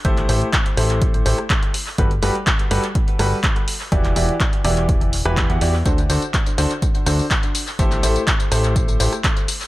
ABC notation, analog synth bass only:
X:1
M:4/4
L:1/16
Q:1/4=124
K:Ador
V:1 name="Analog synth bass" clef=bass
A,,,2 A,,, z3 A,,,4 A,,, z4 z | G,,,2 G,,, z3 G,,, z3 G,,, z4 z | E,,,2 E,,, z3 E,,,4- E,,, E,,,2 E,, E,,2 | D,,2 D,, z3 D,, z3 D,, z4 z |
A,,,2 A,,, z3 A,,,4 A,,, z4 z |]